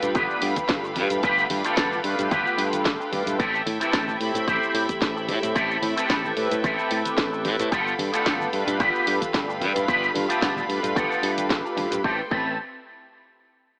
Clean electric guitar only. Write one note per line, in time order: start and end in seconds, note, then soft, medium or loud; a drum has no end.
0.14 0.49 B3 medium
0.14 0.49 F4 medium
0.14 0.50 G4 medium
0.14 0.50 B4 medium
0.83 muted clean electric guitar stroke medium
0.96 muted clean electric guitar stroke soft
1.23 1.44 B3 loud
1.23 1.44 F4 loud
1.23 1.44 G4 loud
1.23 1.45 B4 loud
1.64 1.98 B3 medium
1.64 1.98 F4 medium
1.64 1.98 G4 medium
1.64 1.99 A4 loud
2.31 2.66 B3 medium
2.31 2.66 F4 medium
2.31 2.66 G4 medium
2.31 2.66 B4 medium
3.00 muted clean electric guitar stroke medium
3.12 muted clean electric guitar stroke soft
3.38 3.60 C4 loud
3.38 3.60 E4 loud
3.38 3.60 G4 loud
3.38 3.61 A4 loud
3.80 4.14 C4 medium
3.80 4.14 E4 medium
3.80 4.15 G4 medium
3.80 4.15 A4 loud
4.47 4.82 C4 medium
4.47 4.82 E4 medium
4.47 4.82 G4 medium
4.47 4.82 C5 loud
5.15 muted clean electric guitar stroke medium
5.28 muted clean electric guitar stroke soft
5.55 5.76 C4 loud
5.55 5.76 E4 loud
5.55 5.77 G4 loud
5.55 5.77 A4 loud
5.96 6.30 C4 medium
5.96 6.30 E4 medium
5.96 6.31 G4 medium
5.96 6.31 A4 loud
6.63 6.98 C4 medium
6.63 6.98 E4 medium
6.63 6.98 G4 medium
6.63 6.99 A4 loud
7.32 muted clean electric guitar stroke medium
7.45 muted clean electric guitar stroke soft
7.71 7.92 B3 loud
7.71 7.93 F4 loud
7.71 7.93 G4 loud
7.71 7.93 A4 loud
8.13 8.46 B3 medium
8.13 8.47 F4 medium
8.13 8.47 G4 medium
8.13 8.47 A4 loud
8.79 9.14 B3 medium
8.79 9.14 F4 medium
8.79 9.14 G4 medium
8.79 9.15 B4 loud
9.48 muted clean electric guitar stroke medium
9.61 muted clean electric guitar stroke soft
9.88 10.09 B3 loud
9.88 10.09 F4 loud
9.88 10.09 G4 medium
9.88 10.10 B4 loud
10.29 10.63 B3 medium
10.29 10.63 F4 medium
10.29 10.63 G4 medium
10.29 10.63 A4 loud
10.95 11.30 B3 medium
10.95 11.30 F4 medium
10.95 11.31 G4 medium
10.95 11.31 A4 loud
11.64 muted clean electric guitar stroke medium
11.76 muted clean electric guitar stroke soft
12.04 12.20 C4 medium
12.04 12.20 G4 medium
12.04 12.20 A4 medium
12.31 12.56 C4 medium
12.31 12.56 G4 medium
12.31 12.56 A4 medium